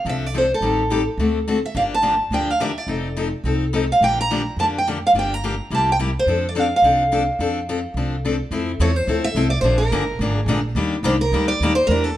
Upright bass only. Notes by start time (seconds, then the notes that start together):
0.05 C2
0.61 A1
1.18 D2
1.75 G1
2.31 D2
2.87 F1
3.44 C2
4.01 A#1
4.56 F2
5.13 G1
5.71 C2
6.26 F2
6.82 C2
7.39 F2
7.94 C2
8.51 F2
8.80 E2
9.07 D2
9.35 C2
9.63 A#1
9.91 G1
10.19 G#1
10.46 A#1
10.75 D#2
11.03 C2
11.32 D2
11.60 D#2
11.88 E2